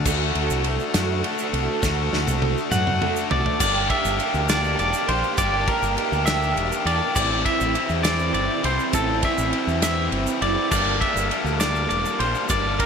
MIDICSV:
0, 0, Header, 1, 6, 480
1, 0, Start_track
1, 0, Tempo, 592885
1, 47, Time_signature, 6, 3, 24, 8
1, 10411, End_track
2, 0, Start_track
2, 0, Title_t, "Clean electric guitar"
2, 0, Program_c, 0, 27
2, 2199, Note_on_c, 0, 78, 112
2, 2648, Note_off_c, 0, 78, 0
2, 2684, Note_on_c, 0, 74, 94
2, 2913, Note_off_c, 0, 74, 0
2, 2922, Note_on_c, 0, 74, 113
2, 3157, Note_off_c, 0, 74, 0
2, 3161, Note_on_c, 0, 76, 100
2, 3637, Note_off_c, 0, 76, 0
2, 3640, Note_on_c, 0, 74, 101
2, 3872, Note_off_c, 0, 74, 0
2, 3882, Note_on_c, 0, 74, 92
2, 4117, Note_on_c, 0, 72, 93
2, 4128, Note_off_c, 0, 74, 0
2, 4359, Note_on_c, 0, 74, 112
2, 4365, Note_off_c, 0, 72, 0
2, 4600, Note_on_c, 0, 70, 93
2, 4606, Note_off_c, 0, 74, 0
2, 5065, Note_on_c, 0, 76, 110
2, 5094, Note_off_c, 0, 70, 0
2, 5555, Note_off_c, 0, 76, 0
2, 5558, Note_on_c, 0, 74, 97
2, 5784, Note_off_c, 0, 74, 0
2, 5794, Note_on_c, 0, 74, 107
2, 6032, Note_off_c, 0, 74, 0
2, 6035, Note_on_c, 0, 76, 101
2, 6484, Note_off_c, 0, 76, 0
2, 6504, Note_on_c, 0, 74, 104
2, 6745, Note_off_c, 0, 74, 0
2, 6755, Note_on_c, 0, 74, 92
2, 7004, Note_off_c, 0, 74, 0
2, 7005, Note_on_c, 0, 72, 85
2, 7238, Note_off_c, 0, 72, 0
2, 7242, Note_on_c, 0, 69, 106
2, 7487, Note_off_c, 0, 69, 0
2, 7487, Note_on_c, 0, 76, 91
2, 7950, Note_off_c, 0, 76, 0
2, 7960, Note_on_c, 0, 76, 98
2, 8433, Note_off_c, 0, 76, 0
2, 8436, Note_on_c, 0, 74, 93
2, 8664, Note_off_c, 0, 74, 0
2, 8674, Note_on_c, 0, 74, 106
2, 8900, Note_off_c, 0, 74, 0
2, 8913, Note_on_c, 0, 76, 100
2, 9387, Note_off_c, 0, 76, 0
2, 9390, Note_on_c, 0, 74, 95
2, 9619, Note_off_c, 0, 74, 0
2, 9627, Note_on_c, 0, 74, 89
2, 9872, Note_on_c, 0, 72, 84
2, 9882, Note_off_c, 0, 74, 0
2, 10124, Note_off_c, 0, 72, 0
2, 10124, Note_on_c, 0, 74, 108
2, 10361, Note_on_c, 0, 70, 91
2, 10370, Note_off_c, 0, 74, 0
2, 10411, Note_off_c, 0, 70, 0
2, 10411, End_track
3, 0, Start_track
3, 0, Title_t, "Distorted electric guitar"
3, 0, Program_c, 1, 30
3, 758, Note_on_c, 1, 66, 81
3, 768, Note_on_c, 1, 62, 84
3, 776, Note_on_c, 1, 57, 68
3, 1466, Note_off_c, 1, 66, 0
3, 1467, Note_off_c, 1, 57, 0
3, 1480, Note_off_c, 1, 62, 0
3, 2191, Note_on_c, 1, 66, 85
3, 2202, Note_on_c, 1, 62, 75
3, 2211, Note_on_c, 1, 57, 73
3, 2902, Note_off_c, 1, 66, 0
3, 2904, Note_off_c, 1, 62, 0
3, 2906, Note_off_c, 1, 57, 0
3, 10411, End_track
4, 0, Start_track
4, 0, Title_t, "Overdriven electric guitar"
4, 0, Program_c, 2, 29
4, 45, Note_on_c, 2, 57, 85
4, 61, Note_on_c, 2, 62, 91
4, 72, Note_on_c, 2, 66, 107
4, 994, Note_off_c, 2, 57, 0
4, 997, Note_on_c, 2, 57, 86
4, 1003, Note_off_c, 2, 66, 0
4, 1006, Note_off_c, 2, 62, 0
4, 1010, Note_on_c, 2, 62, 88
4, 1021, Note_on_c, 2, 66, 90
4, 1477, Note_off_c, 2, 57, 0
4, 1478, Note_off_c, 2, 66, 0
4, 1480, Note_on_c, 2, 57, 99
4, 1489, Note_off_c, 2, 62, 0
4, 1492, Note_on_c, 2, 62, 106
4, 1507, Note_on_c, 2, 66, 106
4, 2426, Note_off_c, 2, 57, 0
4, 2432, Note_off_c, 2, 62, 0
4, 2439, Note_off_c, 2, 66, 0
4, 2439, Note_on_c, 2, 57, 79
4, 2453, Note_on_c, 2, 62, 79
4, 2464, Note_on_c, 2, 66, 93
4, 2906, Note_off_c, 2, 57, 0
4, 2913, Note_off_c, 2, 62, 0
4, 2918, Note_off_c, 2, 66, 0
4, 2918, Note_on_c, 2, 58, 97
4, 2926, Note_on_c, 2, 62, 100
4, 2930, Note_on_c, 2, 67, 105
4, 3159, Note_off_c, 2, 58, 0
4, 3162, Note_on_c, 2, 58, 79
4, 3164, Note_off_c, 2, 62, 0
4, 3166, Note_off_c, 2, 67, 0
4, 3167, Note_on_c, 2, 62, 96
4, 3170, Note_on_c, 2, 67, 89
4, 3397, Note_off_c, 2, 58, 0
4, 3400, Note_on_c, 2, 58, 88
4, 3403, Note_off_c, 2, 62, 0
4, 3407, Note_on_c, 2, 62, 96
4, 3408, Note_off_c, 2, 67, 0
4, 3411, Note_on_c, 2, 67, 94
4, 3627, Note_off_c, 2, 58, 0
4, 3635, Note_off_c, 2, 62, 0
4, 3637, Note_on_c, 2, 58, 94
4, 3645, Note_on_c, 2, 62, 109
4, 3646, Note_off_c, 2, 67, 0
4, 3649, Note_on_c, 2, 67, 112
4, 4113, Note_off_c, 2, 58, 0
4, 4116, Note_off_c, 2, 62, 0
4, 4123, Note_on_c, 2, 58, 77
4, 4126, Note_on_c, 2, 62, 97
4, 4127, Note_off_c, 2, 67, 0
4, 4130, Note_on_c, 2, 67, 97
4, 4352, Note_off_c, 2, 58, 0
4, 4360, Note_off_c, 2, 62, 0
4, 4362, Note_on_c, 2, 58, 96
4, 4368, Note_off_c, 2, 67, 0
4, 4369, Note_on_c, 2, 62, 99
4, 4371, Note_on_c, 2, 67, 111
4, 4589, Note_off_c, 2, 58, 0
4, 4592, Note_off_c, 2, 62, 0
4, 4598, Note_on_c, 2, 58, 85
4, 4602, Note_on_c, 2, 62, 95
4, 4603, Note_off_c, 2, 67, 0
4, 4606, Note_on_c, 2, 67, 98
4, 4828, Note_off_c, 2, 58, 0
4, 4834, Note_off_c, 2, 62, 0
4, 4838, Note_on_c, 2, 58, 85
4, 4844, Note_on_c, 2, 62, 90
4, 4845, Note_off_c, 2, 67, 0
4, 4848, Note_on_c, 2, 67, 104
4, 5070, Note_off_c, 2, 58, 0
4, 5076, Note_off_c, 2, 62, 0
4, 5080, Note_on_c, 2, 58, 93
4, 5086, Note_off_c, 2, 67, 0
4, 5086, Note_on_c, 2, 62, 98
4, 5089, Note_on_c, 2, 67, 106
4, 5549, Note_off_c, 2, 58, 0
4, 5555, Note_off_c, 2, 62, 0
4, 5558, Note_on_c, 2, 58, 85
4, 5564, Note_off_c, 2, 67, 0
4, 5565, Note_on_c, 2, 62, 91
4, 5568, Note_on_c, 2, 67, 96
4, 5784, Note_off_c, 2, 58, 0
4, 5787, Note_off_c, 2, 62, 0
4, 5797, Note_on_c, 2, 52, 106
4, 5802, Note_on_c, 2, 60, 106
4, 5808, Note_on_c, 2, 64, 108
4, 6031, Note_off_c, 2, 52, 0
4, 6034, Note_on_c, 2, 52, 87
4, 6035, Note_off_c, 2, 60, 0
4, 6038, Note_on_c, 2, 60, 99
4, 6040, Note_off_c, 2, 64, 0
4, 6044, Note_on_c, 2, 64, 100
4, 6277, Note_off_c, 2, 52, 0
4, 6280, Note_on_c, 2, 52, 94
4, 6281, Note_off_c, 2, 60, 0
4, 6284, Note_on_c, 2, 60, 97
4, 6285, Note_off_c, 2, 64, 0
4, 6289, Note_on_c, 2, 64, 100
4, 6504, Note_off_c, 2, 52, 0
4, 6510, Note_off_c, 2, 60, 0
4, 6513, Note_off_c, 2, 64, 0
4, 6514, Note_on_c, 2, 52, 95
4, 6520, Note_on_c, 2, 60, 101
4, 6523, Note_on_c, 2, 64, 114
4, 6985, Note_off_c, 2, 52, 0
4, 6989, Note_off_c, 2, 60, 0
4, 6993, Note_off_c, 2, 64, 0
4, 6995, Note_on_c, 2, 52, 92
4, 6999, Note_on_c, 2, 60, 93
4, 7003, Note_on_c, 2, 64, 85
4, 7230, Note_off_c, 2, 52, 0
4, 7233, Note_off_c, 2, 60, 0
4, 7238, Note_off_c, 2, 64, 0
4, 7239, Note_on_c, 2, 52, 91
4, 7243, Note_on_c, 2, 60, 106
4, 7248, Note_on_c, 2, 64, 101
4, 7464, Note_off_c, 2, 52, 0
4, 7469, Note_off_c, 2, 60, 0
4, 7473, Note_on_c, 2, 52, 90
4, 7474, Note_off_c, 2, 64, 0
4, 7479, Note_on_c, 2, 60, 101
4, 7483, Note_on_c, 2, 64, 96
4, 7708, Note_off_c, 2, 52, 0
4, 7712, Note_off_c, 2, 60, 0
4, 7716, Note_off_c, 2, 64, 0
4, 7717, Note_on_c, 2, 52, 83
4, 7722, Note_on_c, 2, 60, 99
4, 7726, Note_on_c, 2, 64, 96
4, 7949, Note_off_c, 2, 52, 0
4, 7953, Note_off_c, 2, 60, 0
4, 7958, Note_off_c, 2, 64, 0
4, 7959, Note_on_c, 2, 52, 90
4, 7963, Note_on_c, 2, 60, 101
4, 7967, Note_on_c, 2, 64, 112
4, 8401, Note_off_c, 2, 67, 0
4, 8425, Note_off_c, 2, 52, 0
4, 8431, Note_off_c, 2, 60, 0
4, 8432, Note_off_c, 2, 64, 0
4, 8435, Note_on_c, 2, 52, 86
4, 8441, Note_on_c, 2, 60, 86
4, 8442, Note_on_c, 2, 64, 87
4, 8663, Note_off_c, 2, 52, 0
4, 8666, Note_off_c, 2, 60, 0
4, 8667, Note_off_c, 2, 64, 0
4, 8676, Note_on_c, 2, 55, 103
4, 8684, Note_on_c, 2, 58, 100
4, 8687, Note_on_c, 2, 62, 103
4, 8916, Note_off_c, 2, 55, 0
4, 8920, Note_on_c, 2, 55, 88
4, 8921, Note_off_c, 2, 58, 0
4, 8925, Note_on_c, 2, 58, 91
4, 8926, Note_off_c, 2, 62, 0
4, 8929, Note_on_c, 2, 62, 96
4, 9152, Note_off_c, 2, 55, 0
4, 9155, Note_on_c, 2, 55, 94
4, 9160, Note_off_c, 2, 58, 0
4, 9162, Note_off_c, 2, 62, 0
4, 9163, Note_on_c, 2, 58, 98
4, 9166, Note_on_c, 2, 62, 96
4, 9391, Note_off_c, 2, 55, 0
4, 9391, Note_off_c, 2, 58, 0
4, 9394, Note_off_c, 2, 62, 0
4, 9394, Note_on_c, 2, 55, 88
4, 9401, Note_on_c, 2, 58, 106
4, 9404, Note_on_c, 2, 62, 105
4, 9875, Note_off_c, 2, 55, 0
4, 9875, Note_off_c, 2, 58, 0
4, 9877, Note_off_c, 2, 62, 0
4, 9878, Note_on_c, 2, 55, 86
4, 9885, Note_on_c, 2, 58, 82
4, 9887, Note_on_c, 2, 62, 92
4, 10117, Note_off_c, 2, 58, 0
4, 10118, Note_off_c, 2, 55, 0
4, 10120, Note_off_c, 2, 62, 0
4, 10121, Note_on_c, 2, 55, 100
4, 10127, Note_on_c, 2, 58, 110
4, 10130, Note_on_c, 2, 62, 119
4, 10358, Note_off_c, 2, 58, 0
4, 10361, Note_off_c, 2, 55, 0
4, 10364, Note_on_c, 2, 55, 85
4, 10366, Note_off_c, 2, 62, 0
4, 10368, Note_on_c, 2, 58, 94
4, 10375, Note_on_c, 2, 62, 104
4, 10411, Note_off_c, 2, 55, 0
4, 10411, Note_off_c, 2, 58, 0
4, 10411, Note_off_c, 2, 62, 0
4, 10411, End_track
5, 0, Start_track
5, 0, Title_t, "Fingered electric bass"
5, 0, Program_c, 3, 33
5, 44, Note_on_c, 3, 38, 92
5, 264, Note_off_c, 3, 38, 0
5, 285, Note_on_c, 3, 38, 88
5, 395, Note_off_c, 3, 38, 0
5, 412, Note_on_c, 3, 36, 94
5, 627, Note_off_c, 3, 36, 0
5, 766, Note_on_c, 3, 42, 100
5, 984, Note_off_c, 3, 42, 0
5, 1240, Note_on_c, 3, 36, 97
5, 1351, Note_off_c, 3, 36, 0
5, 1482, Note_on_c, 3, 38, 102
5, 1701, Note_off_c, 3, 38, 0
5, 1721, Note_on_c, 3, 38, 85
5, 1831, Note_off_c, 3, 38, 0
5, 1839, Note_on_c, 3, 36, 103
5, 2059, Note_off_c, 3, 36, 0
5, 2197, Note_on_c, 3, 42, 98
5, 2418, Note_off_c, 3, 42, 0
5, 2681, Note_on_c, 3, 36, 85
5, 2791, Note_off_c, 3, 36, 0
5, 2917, Note_on_c, 3, 31, 95
5, 3137, Note_off_c, 3, 31, 0
5, 3278, Note_on_c, 3, 31, 92
5, 3389, Note_off_c, 3, 31, 0
5, 3515, Note_on_c, 3, 38, 94
5, 3845, Note_off_c, 3, 38, 0
5, 3878, Note_on_c, 3, 28, 92
5, 3988, Note_off_c, 3, 28, 0
5, 4117, Note_on_c, 3, 34, 96
5, 4228, Note_off_c, 3, 34, 0
5, 4354, Note_on_c, 3, 31, 97
5, 4575, Note_off_c, 3, 31, 0
5, 4714, Note_on_c, 3, 31, 85
5, 4826, Note_off_c, 3, 31, 0
5, 4956, Note_on_c, 3, 38, 103
5, 5285, Note_off_c, 3, 38, 0
5, 5312, Note_on_c, 3, 28, 87
5, 5424, Note_off_c, 3, 28, 0
5, 5549, Note_on_c, 3, 40, 97
5, 5663, Note_off_c, 3, 40, 0
5, 5796, Note_on_c, 3, 33, 96
5, 6016, Note_off_c, 3, 33, 0
5, 6162, Note_on_c, 3, 33, 92
5, 6270, Note_off_c, 3, 33, 0
5, 6392, Note_on_c, 3, 40, 97
5, 6723, Note_off_c, 3, 40, 0
5, 6750, Note_on_c, 3, 31, 99
5, 6863, Note_off_c, 3, 31, 0
5, 6997, Note_on_c, 3, 36, 93
5, 7107, Note_off_c, 3, 36, 0
5, 7235, Note_on_c, 3, 33, 102
5, 7455, Note_off_c, 3, 33, 0
5, 7594, Note_on_c, 3, 33, 86
5, 7706, Note_off_c, 3, 33, 0
5, 7831, Note_on_c, 3, 40, 100
5, 8163, Note_off_c, 3, 40, 0
5, 8192, Note_on_c, 3, 31, 92
5, 8305, Note_off_c, 3, 31, 0
5, 8435, Note_on_c, 3, 30, 95
5, 8546, Note_off_c, 3, 30, 0
5, 8677, Note_on_c, 3, 31, 101
5, 8897, Note_off_c, 3, 31, 0
5, 9031, Note_on_c, 3, 31, 89
5, 9145, Note_off_c, 3, 31, 0
5, 9265, Note_on_c, 3, 38, 95
5, 9601, Note_off_c, 3, 38, 0
5, 9634, Note_on_c, 3, 28, 91
5, 9747, Note_off_c, 3, 28, 0
5, 9875, Note_on_c, 3, 34, 98
5, 9987, Note_off_c, 3, 34, 0
5, 10118, Note_on_c, 3, 31, 100
5, 10339, Note_off_c, 3, 31, 0
5, 10411, End_track
6, 0, Start_track
6, 0, Title_t, "Drums"
6, 45, Note_on_c, 9, 36, 113
6, 45, Note_on_c, 9, 49, 117
6, 48, Note_on_c, 9, 82, 92
6, 126, Note_off_c, 9, 36, 0
6, 126, Note_off_c, 9, 49, 0
6, 129, Note_off_c, 9, 82, 0
6, 285, Note_on_c, 9, 51, 68
6, 366, Note_off_c, 9, 51, 0
6, 408, Note_on_c, 9, 82, 80
6, 489, Note_off_c, 9, 82, 0
6, 520, Note_on_c, 9, 51, 68
6, 601, Note_off_c, 9, 51, 0
6, 644, Note_on_c, 9, 82, 29
6, 725, Note_off_c, 9, 82, 0
6, 761, Note_on_c, 9, 51, 92
6, 764, Note_on_c, 9, 38, 111
6, 765, Note_on_c, 9, 82, 91
6, 842, Note_off_c, 9, 51, 0
6, 845, Note_off_c, 9, 38, 0
6, 846, Note_off_c, 9, 82, 0
6, 1005, Note_on_c, 9, 51, 72
6, 1086, Note_off_c, 9, 51, 0
6, 1121, Note_on_c, 9, 82, 72
6, 1202, Note_off_c, 9, 82, 0
6, 1245, Note_on_c, 9, 51, 67
6, 1326, Note_off_c, 9, 51, 0
6, 1481, Note_on_c, 9, 36, 109
6, 1482, Note_on_c, 9, 82, 94
6, 1483, Note_on_c, 9, 38, 67
6, 1562, Note_off_c, 9, 36, 0
6, 1563, Note_off_c, 9, 82, 0
6, 1564, Note_off_c, 9, 38, 0
6, 1727, Note_on_c, 9, 38, 69
6, 1808, Note_off_c, 9, 38, 0
6, 1841, Note_on_c, 9, 48, 66
6, 1845, Note_on_c, 9, 82, 79
6, 1922, Note_off_c, 9, 48, 0
6, 1926, Note_off_c, 9, 82, 0
6, 1960, Note_on_c, 9, 48, 80
6, 2041, Note_off_c, 9, 48, 0
6, 2086, Note_on_c, 9, 82, 31
6, 2167, Note_off_c, 9, 82, 0
6, 2199, Note_on_c, 9, 47, 84
6, 2201, Note_on_c, 9, 82, 91
6, 2280, Note_off_c, 9, 47, 0
6, 2282, Note_off_c, 9, 82, 0
6, 2325, Note_on_c, 9, 45, 76
6, 2405, Note_off_c, 9, 45, 0
6, 2443, Note_on_c, 9, 45, 99
6, 2524, Note_off_c, 9, 45, 0
6, 2561, Note_on_c, 9, 82, 82
6, 2642, Note_off_c, 9, 82, 0
6, 2679, Note_on_c, 9, 43, 101
6, 2760, Note_off_c, 9, 43, 0
6, 2800, Note_on_c, 9, 43, 88
6, 2881, Note_off_c, 9, 43, 0
6, 2916, Note_on_c, 9, 49, 117
6, 2917, Note_on_c, 9, 36, 106
6, 2919, Note_on_c, 9, 82, 89
6, 2997, Note_off_c, 9, 49, 0
6, 2998, Note_off_c, 9, 36, 0
6, 3000, Note_off_c, 9, 82, 0
6, 3157, Note_on_c, 9, 36, 80
6, 3157, Note_on_c, 9, 51, 75
6, 3238, Note_off_c, 9, 36, 0
6, 3238, Note_off_c, 9, 51, 0
6, 3278, Note_on_c, 9, 82, 70
6, 3359, Note_off_c, 9, 82, 0
6, 3395, Note_on_c, 9, 82, 27
6, 3398, Note_on_c, 9, 51, 75
6, 3476, Note_off_c, 9, 82, 0
6, 3479, Note_off_c, 9, 51, 0
6, 3515, Note_on_c, 9, 82, 30
6, 3596, Note_off_c, 9, 82, 0
6, 3633, Note_on_c, 9, 82, 87
6, 3638, Note_on_c, 9, 51, 96
6, 3641, Note_on_c, 9, 38, 107
6, 3714, Note_off_c, 9, 82, 0
6, 3719, Note_off_c, 9, 51, 0
6, 3722, Note_off_c, 9, 38, 0
6, 3758, Note_on_c, 9, 82, 28
6, 3839, Note_off_c, 9, 82, 0
6, 3877, Note_on_c, 9, 51, 71
6, 3879, Note_on_c, 9, 82, 29
6, 3958, Note_off_c, 9, 51, 0
6, 3960, Note_off_c, 9, 82, 0
6, 3994, Note_on_c, 9, 82, 73
6, 4075, Note_off_c, 9, 82, 0
6, 4117, Note_on_c, 9, 51, 71
6, 4198, Note_off_c, 9, 51, 0
6, 4239, Note_on_c, 9, 82, 28
6, 4320, Note_off_c, 9, 82, 0
6, 4353, Note_on_c, 9, 82, 88
6, 4354, Note_on_c, 9, 51, 89
6, 4356, Note_on_c, 9, 36, 114
6, 4434, Note_off_c, 9, 82, 0
6, 4435, Note_off_c, 9, 51, 0
6, 4437, Note_off_c, 9, 36, 0
6, 4595, Note_on_c, 9, 51, 68
6, 4596, Note_on_c, 9, 36, 84
6, 4676, Note_off_c, 9, 51, 0
6, 4677, Note_off_c, 9, 36, 0
6, 4716, Note_on_c, 9, 82, 73
6, 4797, Note_off_c, 9, 82, 0
6, 4832, Note_on_c, 9, 82, 30
6, 4839, Note_on_c, 9, 51, 78
6, 4913, Note_off_c, 9, 82, 0
6, 4920, Note_off_c, 9, 51, 0
6, 4960, Note_on_c, 9, 82, 30
6, 5041, Note_off_c, 9, 82, 0
6, 5074, Note_on_c, 9, 82, 89
6, 5079, Note_on_c, 9, 51, 106
6, 5081, Note_on_c, 9, 38, 117
6, 5155, Note_off_c, 9, 82, 0
6, 5160, Note_off_c, 9, 51, 0
6, 5162, Note_off_c, 9, 38, 0
6, 5202, Note_on_c, 9, 82, 26
6, 5283, Note_off_c, 9, 82, 0
6, 5316, Note_on_c, 9, 82, 28
6, 5321, Note_on_c, 9, 51, 74
6, 5397, Note_off_c, 9, 82, 0
6, 5402, Note_off_c, 9, 51, 0
6, 5441, Note_on_c, 9, 82, 74
6, 5522, Note_off_c, 9, 82, 0
6, 5560, Note_on_c, 9, 51, 76
6, 5641, Note_off_c, 9, 51, 0
6, 5793, Note_on_c, 9, 82, 93
6, 5796, Note_on_c, 9, 36, 113
6, 5800, Note_on_c, 9, 49, 103
6, 5874, Note_off_c, 9, 82, 0
6, 5877, Note_off_c, 9, 36, 0
6, 5881, Note_off_c, 9, 49, 0
6, 6036, Note_on_c, 9, 36, 76
6, 6037, Note_on_c, 9, 51, 79
6, 6117, Note_off_c, 9, 36, 0
6, 6118, Note_off_c, 9, 51, 0
6, 6158, Note_on_c, 9, 82, 72
6, 6239, Note_off_c, 9, 82, 0
6, 6273, Note_on_c, 9, 82, 29
6, 6276, Note_on_c, 9, 51, 77
6, 6354, Note_off_c, 9, 82, 0
6, 6357, Note_off_c, 9, 51, 0
6, 6389, Note_on_c, 9, 82, 29
6, 6470, Note_off_c, 9, 82, 0
6, 6510, Note_on_c, 9, 82, 87
6, 6514, Note_on_c, 9, 51, 101
6, 6517, Note_on_c, 9, 38, 106
6, 6591, Note_off_c, 9, 82, 0
6, 6595, Note_off_c, 9, 51, 0
6, 6598, Note_off_c, 9, 38, 0
6, 6630, Note_on_c, 9, 82, 27
6, 6711, Note_off_c, 9, 82, 0
6, 6752, Note_on_c, 9, 82, 31
6, 6755, Note_on_c, 9, 51, 75
6, 6833, Note_off_c, 9, 82, 0
6, 6836, Note_off_c, 9, 51, 0
6, 6996, Note_on_c, 9, 51, 78
6, 7077, Note_off_c, 9, 51, 0
6, 7119, Note_on_c, 9, 82, 29
6, 7200, Note_off_c, 9, 82, 0
6, 7231, Note_on_c, 9, 51, 103
6, 7233, Note_on_c, 9, 36, 110
6, 7233, Note_on_c, 9, 82, 92
6, 7312, Note_off_c, 9, 51, 0
6, 7314, Note_off_c, 9, 36, 0
6, 7314, Note_off_c, 9, 82, 0
6, 7470, Note_on_c, 9, 51, 76
6, 7473, Note_on_c, 9, 36, 82
6, 7551, Note_off_c, 9, 51, 0
6, 7554, Note_off_c, 9, 36, 0
6, 7594, Note_on_c, 9, 82, 74
6, 7675, Note_off_c, 9, 82, 0
6, 7713, Note_on_c, 9, 51, 73
6, 7794, Note_off_c, 9, 51, 0
6, 7840, Note_on_c, 9, 82, 29
6, 7921, Note_off_c, 9, 82, 0
6, 7952, Note_on_c, 9, 51, 93
6, 7954, Note_on_c, 9, 38, 113
6, 7957, Note_on_c, 9, 82, 96
6, 8033, Note_off_c, 9, 51, 0
6, 8035, Note_off_c, 9, 38, 0
6, 8037, Note_off_c, 9, 82, 0
6, 8194, Note_on_c, 9, 51, 71
6, 8275, Note_off_c, 9, 51, 0
6, 8313, Note_on_c, 9, 82, 78
6, 8394, Note_off_c, 9, 82, 0
6, 8436, Note_on_c, 9, 51, 69
6, 8517, Note_off_c, 9, 51, 0
6, 8676, Note_on_c, 9, 36, 112
6, 8676, Note_on_c, 9, 57, 98
6, 8676, Note_on_c, 9, 82, 98
6, 8756, Note_off_c, 9, 82, 0
6, 8757, Note_off_c, 9, 36, 0
6, 8757, Note_off_c, 9, 57, 0
6, 8917, Note_on_c, 9, 36, 80
6, 8919, Note_on_c, 9, 51, 70
6, 8998, Note_off_c, 9, 36, 0
6, 9000, Note_off_c, 9, 51, 0
6, 9042, Note_on_c, 9, 82, 78
6, 9122, Note_off_c, 9, 82, 0
6, 9157, Note_on_c, 9, 82, 29
6, 9158, Note_on_c, 9, 51, 79
6, 9238, Note_off_c, 9, 82, 0
6, 9239, Note_off_c, 9, 51, 0
6, 9281, Note_on_c, 9, 82, 31
6, 9361, Note_off_c, 9, 82, 0
6, 9393, Note_on_c, 9, 82, 99
6, 9396, Note_on_c, 9, 51, 97
6, 9398, Note_on_c, 9, 38, 107
6, 9474, Note_off_c, 9, 82, 0
6, 9477, Note_off_c, 9, 51, 0
6, 9479, Note_off_c, 9, 38, 0
6, 9514, Note_on_c, 9, 82, 28
6, 9595, Note_off_c, 9, 82, 0
6, 9636, Note_on_c, 9, 82, 29
6, 9638, Note_on_c, 9, 51, 77
6, 9717, Note_off_c, 9, 82, 0
6, 9719, Note_off_c, 9, 51, 0
6, 9759, Note_on_c, 9, 82, 69
6, 9840, Note_off_c, 9, 82, 0
6, 9879, Note_on_c, 9, 51, 80
6, 9960, Note_off_c, 9, 51, 0
6, 9996, Note_on_c, 9, 82, 29
6, 10077, Note_off_c, 9, 82, 0
6, 10111, Note_on_c, 9, 82, 87
6, 10118, Note_on_c, 9, 36, 105
6, 10119, Note_on_c, 9, 51, 113
6, 10192, Note_off_c, 9, 82, 0
6, 10199, Note_off_c, 9, 36, 0
6, 10200, Note_off_c, 9, 51, 0
6, 10359, Note_on_c, 9, 36, 79
6, 10360, Note_on_c, 9, 51, 84
6, 10411, Note_off_c, 9, 36, 0
6, 10411, Note_off_c, 9, 51, 0
6, 10411, End_track
0, 0, End_of_file